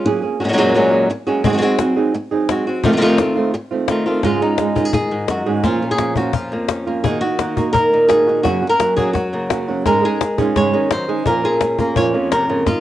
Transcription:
0.05 nylon-string guitar F#3 A#3 C#4 G#4, muted nylon-string guitar stroke
0.22 nylon-string guitar A#3 C#4 G#4
0.40 nylon-string guitar F#3 G#3 C#4 F#4, muted nylon-string guitar stroke
0.44 nylon-string guitar A#2 G#3 C#4 F#4
0.48 nylon-string guitar A#2 F#3 G#3 C#4 F#4
0.53 nylon-string guitar A#2 F#3 G#3 C#4 F#4
0.57 nylon-string guitar F#2 A#2 F#3 G#3 A#3 C#4 F#4 G#4
0.74 nylon-string guitar F#2 A#2 F#3 G#3 A#3 C#4 F#4 G#4
0.92 nylon-string guitar A#3 C#4 G#4
1.09 muted nylon-string guitar stroke
1.27 nylon-string guitar F#3 G#3 A#3 C#4 F#4 G#4
1.44 nylon-string guitar G#2 D#3 F#3 G#3 C4 D#4 F#4 G#4, cajon bass
1.48 nylon-string guitar G#3 C4 F#4
1.53 nylon-string guitar G#3 C4 F#4
1.58 nylon-string guitar G#3 C4 F#4 G#4
1.62 nylon-string guitar F#3 G#3 C4 D#4 F#4
1.79 nylon-string guitar F#3 C4 D#4 F#4 G#4, cajon slap
1.96 nylon-string guitar F#3 C4 D#4 G#4
2.14 muted nylon-string guitar stroke
2.31 nylon-string guitar F#3 C4 D#4 G#4
2.49 nylon-string guitar G#3 C4 F#4, cajon slap
2.67 nylon-string guitar C4 F#4
2.84 nylon-string guitar F2 C3 D#3 A3 C4 F4, cajon bass
2.92 nylon-string guitar C3 D#3 A3 C4 F4
2.97 nylon-string guitar C3 D#3 A3 C4 F4
3.01 nylon-string guitar F2 C3 D#3 A3 C4 F4
3.18 nylon-string guitar D#3 A3 C4 F4, cajon slap
3.36 nylon-string guitar D#3 A3 C4 F4, cajon slap
3.54 muted nylon-string guitar stroke
3.71 nylon-string guitar D#3 A3 C4 F4
3.88 nylon-string guitar D#3 A3 C4 F4, cajon slap
4.06 nylon-string guitar D#3 A3 C4 F4
4.23 nylon-string guitar G#2 C#3 G#3 C#4 D#4 F4 G#4, cajon bass, cajon slap
4.41 nylon-string guitar G#3 C#4 D#4 G#4
4.58 nylon-string guitar G#3 C#4 D#4 G#4, cajon slap
4.76 nylon-string guitar D#3 G#3 C#4 D#4 F4 G#4, cajon bass
4.85 nylon-string guitar G#4
4.93 nylon-string guitar G#4, muted nylon-string guitar stroke, cajon bass
5.11 nylon-string guitar G#2 G#3
5.28 nylon-string guitar F#2 F#4, cajon slap
5.46 nylon-string guitar G#2 G#3 C#4 D#4 G#4
5.63 nylon-string guitar A#2 F3 A#3 C#4 F4, cajon bass, cajon slap
5.81 nylon-string guitar A#3 C#4 F4, cajon slap
5.91 nylon-string guitar G#4
5.98 nylon-string guitar F3 A#3 C#4 F4, cajon slap
6.16 nylon-string guitar F3 A#3 C#4 F4 F#4, cajon bass
6.33 nylon-string guitar F4, muted nylon-string guitar stroke, cajon bass
6.52 nylon-string guitar F2 A#3
6.69 nylon-string guitar C#4, cajon slap
6.87 nylon-string guitar A#3 C#4 F4
7.04 nylon-string guitar D#3 A#3 D#4 F#4 G#4, cajon bass
7.21 nylon-string guitar A#3 D#4 F#4, cajon slap
7.39 nylon-string guitar D#3 A#3 D#4 F#4, cajon slap
7.57 nylon-string guitar A#3 D#4 F#4, cajon bass
7.73 nylon-string guitar A#4, muted nylon-string guitar stroke, cajon bass
7.93 nylon-string guitar A#2 D#4
8.09 nylon-string guitar A#3 D#4 F#4 G#4, cajon slap
8.27 nylon-string guitar A#3 D#4 F#4
8.43 nylon-string guitar F#2 C#3 F#3 A#3 C#4 F#4, cajon bass, cajon slap
8.62 nylon-string guitar F#3 A#3 C#4 F#4
8.69 nylon-string guitar A#4
8.80 nylon-string guitar F#3 A#3 C#4 F#4, cajon slap
8.97 nylon-string guitar F#3 A#3 C#4 F#4 G#4, cajon bass
9.13 nylon-string guitar F#4, muted nylon-string guitar stroke, cajon bass, cajon slap
9.33 nylon-string guitar C#3 A#3
9.50 nylon-string guitar F#3 A#3 C#4 F#4, cajon slap
9.68 nylon-string guitar F#3 A#3 C#4 F#4
9.85 nylon-string guitar G#2 C#3 G#3 C#4 D#4 G#4 A#4, cajon bass, cajon slap
10.03 nylon-string guitar G#3 C#4 D#4 G#4, cajon slap
10.21 muted nylon-string guitar stroke, cajon slap
10.38 nylon-string guitar G#3 C#4 D#4 F4 G#4, cajon bass
10.56 nylon-string guitar G#2 C#3 G#3 C#4 D#4 G#4 C#5, cajon bass, cajon slap
10.73 nylon-string guitar D#3 G#3 C#4 D#4 G#4
10.91 nylon-string guitar F#3 C5, muted nylon-string guitar stroke, cajon slap
11.08 nylon-string guitar G#3 C#4 D#4 G#4
11.26 nylon-string guitar A#2 F3 A#3 C#4 F4 A#4, cajon bass
11.44 nylon-string guitar A#3 C#4 F4 G#4
11.61 nylon-string guitar C#4, muted nylon-string guitar stroke, cajon slap
11.78 nylon-string guitar A#3 C#4 F4 A#4, cajon bass
11.96 nylon-string guitar A#2 F3 A#3 C#4 F4 C#5, cajon bass
12.14 nylon-string guitar F2 A#3 C#4 F4
12.31 nylon-string guitar C3 A#4, muted nylon-string guitar stroke, cajon slap
12.49 nylon-string guitar C#3 A#3 C#4 F4
12.66 nylon-string guitar D#3 F4, muted nylon-string guitar stroke, cajon bass, cajon slap

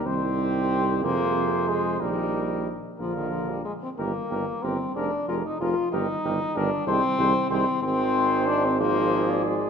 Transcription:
0.06 tuba C2, trombone D#3, french horn C4, flugelhorn G4, trumpet C5
1.03 tuba F2, trombone C3, french horn A#3, flugelhorn G#4, trumpet C5
1.68 french horn G#3
2.00 tuba A#1, trombone D#3, french horn G3, flugelhorn D#4, trumpet A#4
2.99 tuba A#1, trombone D3, french horn F3, flugelhorn F4, trumpet A#4
3.17 french horn D#3
3.31 french horn F3
3.50 french horn G3
3.65 french horn G#3
3.83 french horn C4
3.97 tuba G1, trombone D#3, french horn A#3, flugelhorn G4, trumpet A#4
4.30 tuba G1, trombone D#3, flugelhorn G4, trumpet A#4
4.63 tuba G1, trombone D#3, french horn C4, flugelhorn G4, trumpet A#4
4.95 tuba F1, trombone F3, french horn D4, flugelhorn G#4, trumpet A#4
5.28 tuba F1, trombone F3, french horn F4, flugelhorn G#4, trumpet A#4
5.45 french horn D#4
5.60 tuba F1, trombone F3, french horn F4, flugelhorn G#4, trumpet A#4
5.92 tuba G1, trombone D#3, french horn D#4, flugelhorn G4, trumpet A#4
6.24 tuba G1, trombone D#3, flugelhorn G4, trumpet A#4
6.55 tuba G1, trombone D#3, french horn D4, flugelhorn G4, trumpet A#4
6.87 tuba C2, trombone D#3, french horn C4, flugelhorn G#4, trumpet C5
7.18 tuba C2, trombone D#3, flugelhorn G#4, trumpet C5
7.50 tuba C2, trombone D#3, french horn C4, flugelhorn G#4, trumpet C5
7.82 tuba G#1, trombone D#3, french horn C4, flugelhorn G#4, trumpet C5
8.47 french horn D4
8.65 french horn C4
8.80 trombone F3, french horn A#3, flugelhorn G#4, trumpet C5
9.30 trumpet D5
9.46 french horn G#3

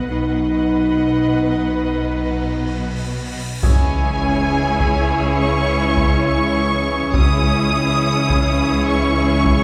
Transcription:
0.10 double bass section B1, cello section B2, french horn section D#4, viola section B4, violin section D#5 F#5, cymbal swell
3.62 cello section C#2, double bass section C#2, trombone section C#3 E3, french horn section G#3 C#4, viola section C#4 E4, pipe organ C#4 E4 G#4 C#5, violin section G#4 C#5 G#5, taiko, sub drop
4.80 taiko
5.39 violin section C#6
5.97 taiko
6.26 violin section C#6
7.13 cello section C#2, double bass section C#2, trombone section C#3 E3, french horn section G#3 C#4, pipe organ C#4 E4 G#4 C#5, viola section C#4 E4, violin section G#4 C#5 D#6, taiko
8.30 taiko
8.87 violin section C#6
9.45 taiko

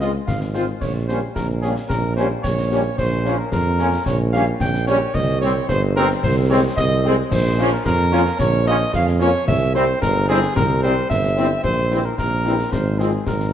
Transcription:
Already playing: tuba C#2
0.00 trombone section G#3, french horn section G#3 C4 F4, cornet D#5, snare
0.27 tuba G#1, cornet F5, concert bass drum, snare
0.41 snare
0.54 french horn section G#3 C4 F4, trombone section G#3 F4, cornet C5, snare
0.81 tuba A#1, cornet C#5, concert bass drum, crash
1.07 trombone section G3 C#4, french horn section A#3 C#4 G4, cornet C5, snare
1.35 tuba A#1, cornet A#4, concert bass drum, snare
1.61 trombone section G3 C#4, french horn section A#3 C#4 G4, cornet G#4, snare
1.76 snare
1.89 tuba A#1, cornet A#4, concert bass drum, snare
2.15 trombone section G3 C#4, french horn section A#3 C#4 G4, cornet C5, snare
2.42 tuba A#1, cornet C#5, concert bass drum, snare
2.58 snare
2.71 trombone section G3 C#4, french horn section A#3 C#4 G4, snare
2.97 tuba A#1, cornet C5, concert bass drum, crash
3.25 trombone section F3 C#4, french horn section A#3 C#4 F4, snare
3.38 cornet A#4
3.52 tuba F2, cornet A#4, concert bass drum, snare
3.79 trombone section F3 C#4, french horn section A#3 C#4 F4, snare
3.93 snare
4.05 tuba A#1, cornet C#5, concert bass drum, snare
4.33 french horn section G3 C#4 G4, trombone section G3 C#4, cornet F5, snare
4.60 tuba A#1, cornet G5, concert bass drum, snare
4.74 snare
4.87 french horn section G3 C#4 G4, trombone section G3 C#4, cornet C#5, snare
5.14 tuba C2, cornet D#5, concert bass drum, crash
5.41 trombone section G3 C4, french horn section G3 C4 G4, cornet C#5, snare
5.69 tuba G1, cornet C5, concert bass drum, snare
5.96 trombone section G3 C4, french horn section G3 C4 G4, cornet A#4, snare
6.10 snare
6.22 tuba C2, cornet C5, concert bass drum, snare
6.50 trombone section G#3 C4, french horn section G#3 C4 G#4, cornet C#5
6.77 tuba C2, cornet D#5, concert bass drum, snare
7.04 french horn section G#3 C4 G#4, trombone section G#3 C4
7.31 tuba A#1, cornet C5, concert bass drum, crash
7.58 trombone section F3 C#4, french horn section A#3 C#4 F4, snare
7.73 cornet A#4
7.85 tuba F2, cornet A#4, concert bass drum, snare
8.12 trombone section F3 C#4, french horn section A#3 C#4 F4, snare
8.26 snare
8.39 tuba A#1, cornet C#5, concert bass drum, snare
8.66 trombone section F3 C#4, french horn section A#3 C#4 F4, cornet D#5, snare
8.93 tuba F2, cornet F5, concert bass drum, snare
9.07 snare
9.20 trombone section F3 C#4, french horn section A#3 C#4 F4, cornet C#5, snare
9.47 tuba C2, cornet E5, concert bass drum, crash
9.74 french horn section G3 C4 E4, trombone section G3 C4, cornet C5, snare
10.02 tuba G1, cornet A#4, concert bass drum, snare
10.29 french horn section G3 C4 E4, trombone section G3 C4, cornet G#4, snare
10.43 snare
10.56 tuba C2, cornet A#4, concert bass drum, snare
10.82 french horn section G3 C4 E4, trombone section G3 C4, cornet C5, snare
11.10 tuba G1, cornet E5, concert bass drum, snare
11.24 snare
11.37 french horn section G3 C4 E4, trombone section G3 C4, snare
11.64 tuba A#1, cornet C5, concert bass drum, crash
11.91 trombone section E3 C4, french horn section G3 C4 E4, snare
12.05 cornet A#4
12.18 tuba A#1, cornet A#4, concert bass drum, snare
12.45 trombone section E3 C4, french horn section G3 C4 E4, snare
12.59 snare
12.72 tuba G#1, cornet C5, concert bass drum, snare
12.99 trombone section F3 C4, french horn section G#3 C4 F4, cornet G#4, snare
13.27 tuba G#1, cornet A#4, concert bass drum, snare
13.40 snare

